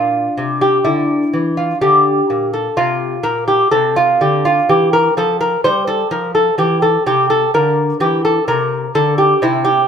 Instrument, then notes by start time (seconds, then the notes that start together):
lute
Already playing: A#2 D4 F4
0.37 C3
0.61 G4
0.84 D3 E4
1.33 E3
1.57 F4
1.81 D3 G4
2.30 A#2
2.53 A4
2.77 C3 F4
3.23 A#2 A#4
3.48 G4
3.71 C3 C4 A4
3.96 F4
4.21 D3 G4
4.45 F4
4.69 E3 G4
4.93 A#4
5.17 F3 A4
5.41 A#4
5.64 G3 C5
5.87 A4
6.11 F3 A#4
6.35 A4
6.58 E3 G4
6.82 A4
7.06 C3 G4
7.30 A4
7.54 D3 A#3 A#4
8.00 E3 G4
8.25 A4
8.48 C3 A#4
8.95 D3 A4
9.18 G4
9.42 C3 C4 E4
9.65 G4